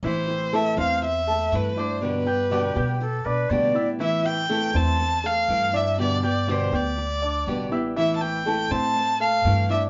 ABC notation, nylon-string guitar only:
X:1
M:4/4
L:1/8
Q:1/4=121
K:Am
V:1 name="Nylon-string guitar"
[E,A,CE] [A,CE] [E,A,CE] [A,CE] z2 [E,A,CE] [A,CE] | [B,,D,G,B,G] [G,B,G] [B,,D,G,B,G] [G,B,G] z2 [B,,D,G,B,G] [G,B,G] | [E,A,CE] [A,CE] [E,A,CE] [A,CE] z2 [E,A,CE] [A,CE] | [B,,D,G,B,G] [G,B,G] [B,,D,G,B,G] [G,B,G] z2 [B,,D,G,B,G] [G,B,G] |
[E,A,CE] [A,CE] [E,A,CE] [A,CE] z2 [E,A,CE] [A,CE] |]